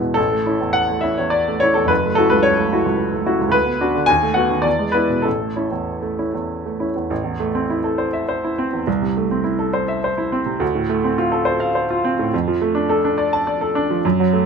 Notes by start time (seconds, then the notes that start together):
Already playing: E2 G#3 B3 E4
0.01 B2
0.14 A1 A4
0.32 A3
0.46 C#4 E4
0.61 E2
0.73 F#5
0.89 A3
1.01 C#4 E4 E5
1.18 E2 C#5
1.30 D5
1.48 A3
1.60 C#4 E4 C#5
1.74 E2 A4
1.85 F#1 B4
2.05 A3
2.15 E4 F#4 A4
2.30 C#2 B4
2.43 C#5
2.59 A3
2.73 E4 F#4
2.86 C#2
3.14 A3
3.26 E4 F#4
3.41 C#2
3.49 D2 B4
3.66 B3
3.81 D4 F#4
3.95 D3
4.06 D#2 G#5
4.23 A3
4.34 B3 F#4 F#5
4.51 D#3
4.62 E2 D5
4.79 G#3
4.92 B3 E4 B4
5.09 B2
5.22 A1 A4
5.40 A3
5.56 C#4 E4
5.71 E2
6.02 A3
6.19 C#4 E4
6.34 E2
6.66 A3
6.80 C#4 E4
6.96 E2
7.10 A1
7.24 E2
7.40 A3
7.55 C4
7.70 E4
7.84 A4
7.98 C5
8.13 E5
8.29 C5
8.44 E4
8.58 C4
8.73 E2
8.87 C2
9.02 C3
9.17 A3
9.31 C4
9.44 E4
9.59 A4
9.73 C5
9.88 E5
10.04 C5
10.18 E4
10.32 C4
10.46 C3
10.60 D2
10.75 A2
10.89 A3
11.04 C4
11.18 F4
11.32 A4
11.45 C5
11.60 F5
11.75 C5
11.90 F4
12.05 C4
12.19 A2
12.34 F2
12.48 F3
12.62 A3
12.75 D4
12.89 A4
13.05 D4
13.18 D5
13.33 A5
13.47 D5
13.61 A4
13.75 D4
13.90 F3
14.05 F#2
14.20 F#3
14.33 A3